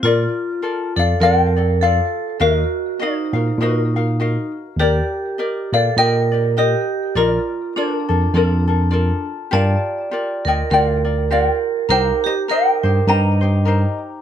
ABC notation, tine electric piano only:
X:1
M:4/4
L:1/8
Q:"Swing" 1/4=101
K:Bb
V:1 name="Tine electric piano" clef=bass
B,, z2 F,, F,,4 | E,, z2 B,, B,,4 | E,, z2 B,, B,,4 | B,,, z2 F,, F,,4 |
G,, z2 D,, D,,4 | C,, z2 G,, G,,4 |]